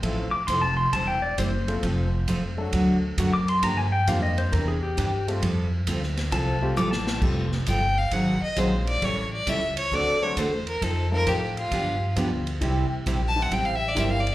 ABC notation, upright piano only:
X:1
M:4/4
L:1/8
Q:"Swing" 1/4=134
K:F
V:1 name="Upright piano"
[F,A,CEF] z6 [F,A,CFA] | z3 [_G,A,D_GA]3 z2 | z2 [G,B,DFG]2 z3 [G,A,CFG] | z4 z [G,A,CFG] z2 |
[G,A,CFG] z4 z [_G,_A,C_EF]2 | z4 z [^F,A,CD^F] z2 | z [F,A,C_EF]3 z2 [F,G,=B,DF] z | [E,G,CEG]3 [E,G,CEG] z2 [E,G,CEB] z |]